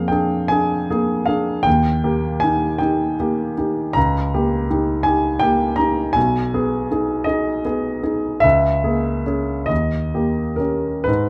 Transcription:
Already playing: F2 A#3 G#4 F5
0.08 D4 G#4 G5
0.48 D4 G#4 G#5
0.91 A#3 G#4
1.26 D4 G#4 F5
1.63 D#2 G5
2.04 A#3 G4
2.40 D#4 G4 G#5
2.78 D#4 G4 G5
3.20 A#3 G4
3.58 D#4 G4
3.93 C#2 A#5
4.34 A#3 G4
4.70 D#4 G4
5.03 D#4 G4 G#5
5.39 A#3 G4 G5
5.76 D#4 G4 A#5
6.13 B1 G#5
6.54 B3 G#4
6.91 D#4 G#4
7.24 D#4 G#4 D#5
7.65 B3 G#4
8.03 D#4 G#4
8.40 C#2 E5
8.84 A#3 G#4
9.26 C#4 G#4
9.66 D#2 D#5
10.14 A#3 G4
10.56 C#4 G4 A#4
11.04 G#2 B4

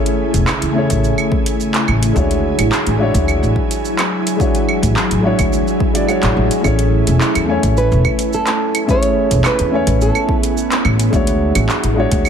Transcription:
Already playing: C#3 A3 C#4 E4 G#4 C#5 G#5
0.06 closed hi-hat, shaker
0.34 E1, kick, closed hi-hat, shaker
0.48 clap, claves, shaker
0.62 E2, closed hi-hat, shaker
0.73 A3 C#4 E4
0.77 G#4 C#5
0.90 A1, kick, closed hi-hat, shaker
1.04 shaker
1.18 claves, shaker
1.32 kick
1.46 closed hi-hat, shaker
1.60 shaker
1.74 clap, closed hi-hat, shaker
1.88 A1, claves
2.03 closed hi-hat, shaker
2.13 D2 F#3 G#3 D4 E4 F#4, kick, shaker
2.19 C#5
2.31 closed hi-hat, shaker
2.58 A1, closed hi-hat, claves, shaker
2.72 clap, shaker
2.87 A1, closed hi-hat, shaker
2.97 G#3 D4 E4 F#4
3.03 C#5
3.14 D2, kick, closed hi-hat, shaker
3.28 claves, shaker
3.43 A1, shaker
3.56 kick
3.71 closed hi-hat, shaker
3.85 shaker
3.99 clap, closed hi-hat, claves, shaker
4.27 closed hi-hat, shaker
4.37 G#3 D4 E4, kick
4.41 F#4 C#5, shaker
4.55 closed hi-hat, shaker
4.69 claves
4.83 A1, kick, closed hi-hat, shaker
4.97 clap, shaker
5.11 A1, closed hi-hat, shaker
5.21 G#3 D4 E4 F#4
5.27 C#5
5.39 D2, kick, closed hi-hat, claves, shaker
5.53 shaker
5.68 shaker
5.80 kick
5.93 G#3 D4 E4 F#4 D5, closed hi-hat, shaker
6.07 G#3 D4 E4 F#4 C#5, claves, shaker
6.23 A1, clap, closed hi-hat, shaker
6.37 A1
6.51 closed hi-hat, shaker
6.61 A1 A3 C#4 E4, kick, claves, shaker
6.65 G#4 C#5
6.79 closed hi-hat, shaker
7.07 E1, closed hi-hat, shaker
7.21 clap, shaker
7.35 E2, closed hi-hat, claves, shaker
7.45 A3 C#4 E4
7.50 C#5 G#5
7.63 A1, kick, closed hi-hat, shaker
7.77 B4, shaker
7.92 E1, shaker
8.05 kick, claves
8.19 closed hi-hat, shaker
8.33 A4, shaker
8.47 clap, closed hi-hat, shaker
8.75 closed hi-hat, claves, shaker
8.86 A3 B3 C#4 E4 G#4, kick, shaker
8.91 C#5
9.03 closed hi-hat, shaker
9.31 E1, kick, closed hi-hat, shaker
9.44 B4, clap, claves, shaker
9.59 E2, closed hi-hat, shaker
9.70 A3 C#4 E4 G#5
9.75 C#5
9.87 A1, kick, closed hi-hat, shaker
10.01 A4, shaker
10.15 claves, shaker
10.29 kick
10.39 G#4
10.43 closed hi-hat, shaker
10.57 shaker
10.72 clap, closed hi-hat, shaker
10.85 A1, claves
11.00 closed hi-hat, shaker
11.10 D2 F#3 G#3 D4 E4, kick, shaker
11.14 F#4 C#5
11.27 closed hi-hat, shaker
11.55 A1, closed hi-hat, claves, shaker
11.69 clap, shaker
11.84 A1, closed hi-hat, shaker
11.94 G#3 D4 E4 F#4
12.00 C#5
12.12 D2, kick, closed hi-hat, shaker
12.25 claves, shaker

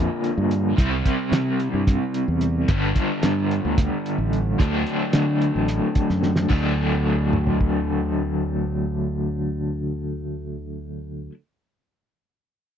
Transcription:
Already playing: A#2 D3 F3 A#3 F4
0.24 closed hi-hat
0.38 G2
0.51 closed hi-hat
0.77 C2 C3 G3 C4 E4, kick, closed hi-hat
1.05 kick, closed hi-hat
1.32 C3, snare, closed hi-hat
1.60 closed hi-hat
1.74 G2
1.87 kick, closed hi-hat
2.14 closed hi-hat
2.28 E2
2.41 closed hi-hat
2.68 G1 G2 D3 G3 B3 D4, kick, closed hi-hat
2.96 kick, closed hi-hat
3.23 G2, snare, closed hi-hat
3.51 closed hi-hat
3.65 D2
3.78 kick, closed hi-hat
4.06 closed hi-hat
4.18 A1
4.33 closed hi-hat
4.58 D2 D3 F#3 A3 D4, kick, closed hi-hat
4.86 closed hi-hat
5.13 D3, snare, closed hi-hat
5.42 closed hi-hat
5.56 A1
5.68 snare, closed hi-hat
5.95 kick, closed hi-hat
6.10 F#2, snare
6.23 snare
6.36 snare
6.49 D2 D3 F#3 A3, kick, crash
6.53 D4
7.33 mid tom
7.47 floor tom
7.61 kick

